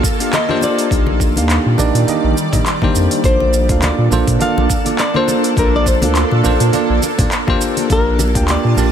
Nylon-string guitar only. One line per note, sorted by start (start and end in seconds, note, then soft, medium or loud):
0.00 0.34 F5 loud
0.34 0.63 D#5 loud
0.64 2.92 D5 medium
3.25 3.85 C5 loud
3.83 4.41 D5 medium
4.42 4.95 F5 loud
5.00 5.14 D5 loud
5.17 5.59 C5 medium
5.59 5.75 A#4 loud
5.76 5.88 D5 medium
5.88 7.04 C5 medium
7.92 8.46 A#4 loud
8.51 8.92 D5 loud